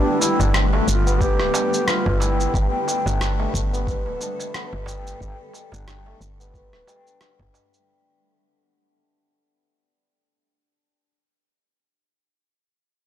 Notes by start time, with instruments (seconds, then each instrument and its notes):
Already playing: ambient pad D3 G3 A3 B3 G4, santur G3 A3 B3 D4, duduk D4
0.21 duduk E4, darbuka ka, shaker
0.39 fm bass G1, santur D4, darbuka tek, darbuka dum, shaker
0.54 cross-stick, shaker
0.73 santur A3, darbuka ka
0.88 fm bass G1, duduk F4, shaker
1.06 santur B3, shaker
1.21 duduk G4, kick, shaker
1.40 fm bass D1, cross-stick
1.54 santur D4, darbuka tek, shaker
1.74 shaker
1.87 santur B3, duduk F4, cross-stick, shaker
2.06 fm bass G1, kick, darbuka dum
2.20 santur G3, duduk E4, darbuka tek, shaker
2.40 shaker
2.54 fm bass G1, santur G3, ambient pad A4, kick, shaker
2.88 darbuka ka, shaker
3.06 fm bass G1, santur D4, darbuka dum, shaker
3.21 cross-stick, shaker
3.40 santur A3, darbuka ka
3.54 fm bass G1, kick, shaker
3.73 santur B3, shaker
3.87 kick, shaker
4.06 fm bass D1, darbuka tek
4.21 santur D4, darbuka ka, shaker
4.40 darbuka ka, darbuka tek, shaker
4.54 santur B3, cross-stick, shaker
4.73 fm bass G1, darbuka tek
4.86 santur G3, darbuka ka, darbuka tek, darbuka dum, shaker
5.07 shaker
5.21 fm bass G1, santur G3, kick, shaker
5.54 darbuka ka, shaker
5.72 fm bass G1, santur D4, darbuka tek, darbuka dum, shaker
5.88 cross-stick, shaker
6.06 santur A3, darbuka ka
6.21 fm bass G1, shaker
6.39 santur B3, shaker
6.54 kick, shaker
6.73 fm bass D1, cross-stick
6.87 santur G3, darbuka tek, shaker
7.06 santur D4, shaker
7.21 cross-stick, shaker
7.39 fm bass G1, santur D4, kick, darbuka dum
7.54 darbuka tek, shaker
7.74 shaker